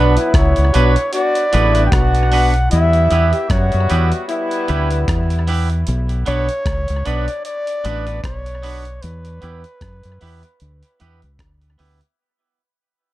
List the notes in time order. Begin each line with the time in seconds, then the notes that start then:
Already playing: B1 F#3 B3 D4 F#4 B4
0.16 F#3 B3 E4, closed hi-hat
0.34 C#2 C#5, kick, cross-stick, closed hi-hat
0.56 C#2, closed hi-hat
0.72 B1 B3 D4 F#4 B4, closed hi-hat
0.96 closed hi-hat
1.12 B3 D4 F#4 D5, closed hi-hat
1.35 closed hi-hat
1.52 A1 C#3 A3 B3 D4 E4 F#4 B4, closed hi-hat
1.75 B3 D4 F#4 B4, closed hi-hat
1.87 B3 F#4 G5
1.91 B1 D4 F#5, kick, cross-stick, closed hi-hat
2.15 closed hi-hat
2.32 B3 D4 F#4 B4, open hi-hat
2.54 closed hi-hat
2.70 E2 G3 B3 E4 E5, closed hi-hat
2.93 closed hi-hat
3.11 E2 B3 E4 G4 B4, closed hi-hat
3.32 B3 E4 G4, closed hi-hat
3.49 F#2 G3 B3 F#4 C#5, kick, cross-stick, closed hi-hat
3.72 F#2, closed hi-hat
3.89 E2 B3 E4 G4 B4, closed hi-hat
4.12 closed hi-hat
4.28 G3 B3 E4 B4, closed hi-hat
4.51 closed hi-hat
4.68 D2 B3 E4 G4 B4, closed hi-hat
4.91 closed hi-hat
5.08 E2, kick, cross-stick, closed hi-hat
5.30 closed hi-hat
5.47 B3 E4 G4 B4, open hi-hat
5.70 closed hi-hat
5.87 B1, closed hi-hat
6.09 closed hi-hat
6.26 B1 B3 D4 F#4 B4 C#5, closed hi-hat
6.49 closed hi-hat
6.66 C#2, kick, cross-stick, closed hi-hat
6.88 C#2, closed hi-hat
7.05 B1 B3 D4 F#4 B4 D5, closed hi-hat
7.28 closed hi-hat
7.45 D5, closed hi-hat
7.67 closed hi-hat
7.84 A1 B3 D4 F#4 B4, closed hi-hat
8.07 B3 D4 F#4 B4, closed hi-hat
8.24 B1 C#5, kick, cross-stick, closed hi-hat
8.46 closed hi-hat
8.63 B3 D4 F#4 B4, open hi-hat
8.85 closed hi-hat
9.02 E2 B4, closed hi-hat
9.25 closed hi-hat
9.41 E2 B3 E4 G4 B4, closed hi-hat
9.64 closed hi-hat
9.81 F#2, kick, cross-stick, closed hi-hat
10.03 F#2, closed hi-hat
10.21 E2 B3 E4 G4 B4, open hi-hat
10.43 closed hi-hat
10.60 D2, closed hi-hat
10.83 closed hi-hat
11.00 E2 B3 E4 G4 B4, closed hi-hat
11.22 C#2, muted clean electric guitar stroke, closed hi-hat
11.39 D2, kick, cross-stick, closed hi-hat
11.62 closed hi-hat
11.78 D2 B3 E4 G4 B4, open hi-hat
12.01 closed hi-hat